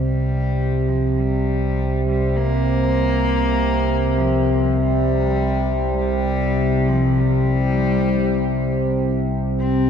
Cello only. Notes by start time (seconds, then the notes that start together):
0.00 G3
0.87 F3
1.19 G3
2.08 G3
2.37 A#3
4.18 F3
4.76 G3
5.97 G3
6.88 F3
7.19 G3
9.59 C4